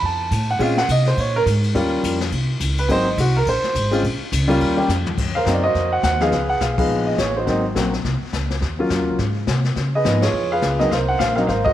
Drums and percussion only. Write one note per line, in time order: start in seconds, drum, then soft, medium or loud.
0.03 kick soft
0.31 kick soft
0.31 hi-hat pedal medium
0.31 ride medium
0.60 kick soft
0.60 ride medium
0.77 snare medium
0.89 kick soft
0.89 hi-hat pedal medium
0.89 ride medium
1.06 snare soft
1.17 kick soft
1.17 ride medium
1.46 kick soft
1.46 hi-hat pedal medium
1.46 ride medium
1.64 ride medium
1.75 kick soft
1.75 ride medium
2.03 kick soft
2.03 hi-hat pedal medium
2.03 ride medium
2.20 snare soft
2.20 ride soft
2.32 kick soft
2.32 ride medium
2.60 kick soft
2.60 hi-hat pedal medium
2.60 ride medium
2.78 ride medium
2.89 kick soft
2.89 ride medium
3.18 kick soft
3.18 hi-hat pedal medium
3.18 ride loud
3.46 kick soft
3.46 ride medium
3.64 snare medium
3.75 kick soft
3.75 hi-hat pedal medium
3.75 ride medium
3.93 ride medium
4.04 kick soft
4.04 ride medium
4.32 kick soft
4.32 hi-hat pedal medium
4.32 ride medium
4.50 ride medium
4.60 kick soft
4.60 ride medium
4.89 snare medium
4.89 hi-hat pedal medium
5.06 floor tom medium
5.18 brush sweep medium
5.18 kick medium
5.18 snare soft
5.18 crash medium
5.46 kick soft
5.46 snare medium
5.46 hi-hat pedal medium
5.75 brush sweep soft
5.75 kick soft
5.75 snare soft
6.03 kick soft
6.03 snare medium
6.03 hi-hat pedal medium
6.20 snare soft
6.32 brush sweep soft
6.32 kick soft
6.32 snare soft
6.61 kick soft
6.61 snare medium
6.61 hi-hat pedal medium
6.78 kick medium
6.78 crash medium
6.90 brush sweep medium
7.18 kick soft
7.18 snare medium
7.18 hi-hat pedal medium
7.47 brush sweep soft
7.47 kick soft
7.47 snare soft
7.76 kick soft
7.76 snare medium
7.76 hi-hat pedal medium
7.93 snare soft
8.04 brush sweep medium
8.04 kick soft
8.04 snare soft
8.33 kick soft
8.33 snare medium
8.33 hi-hat pedal medium
8.50 snare soft
8.62 brush sweep soft
8.62 kick soft
8.62 snare soft
8.90 kick soft
8.90 snare medium
8.90 hi-hat pedal medium
9.19 brush sweep soft
9.19 kick soft
9.19 snare soft
9.47 kick soft
9.47 snare medium
9.47 hi-hat pedal medium
9.64 snare soft
9.76 brush sweep medium
9.76 kick soft
9.76 snare soft
10.05 kick soft
10.05 snare medium
10.05 hi-hat pedal medium
10.22 snare medium
10.22 ride medium
10.33 brush sweep soft
10.62 kick soft
10.62 snare medium
10.62 hi-hat pedal medium
10.80 snare soft
10.91 brush sweep medium
10.91 kick soft
10.91 snare soft
11.20 kick soft
11.20 snare medium
11.20 hi-hat pedal medium
11.37 snare soft
11.48 brush sweep medium
11.48 kick soft
11.48 snare soft
11.66 kick medium